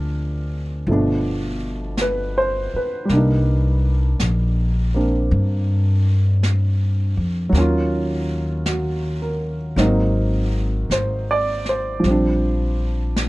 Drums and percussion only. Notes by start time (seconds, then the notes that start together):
0.87 brush sweep
1.97 brush sweep, snare, hi-hat pedal
3.09 brush sweep, snare
4.20 brush sweep, snare, hi-hat pedal
5.31 brush sweep
6.43 brush sweep, snare, hi-hat pedal
7.54 brush sweep, snare
8.66 brush sweep, snare, hi-hat pedal
9.77 brush sweep, snare
10.91 brush sweep, snare, hi-hat pedal
11.65 snare
12.04 brush sweep, snare
13.16 brush sweep, snare, hi-hat pedal